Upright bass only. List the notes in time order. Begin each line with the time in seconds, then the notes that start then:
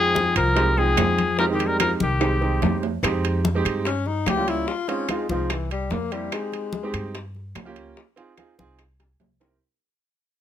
Already playing: F2
0.36 C2
0.97 F2
2.01 C2
2.62 F2
3.03 F2
3.65 G2
4.26 C#2
5.30 C2
5.91 F2
6.93 G2
7.55 C#2
8.59 C2
9.20 C2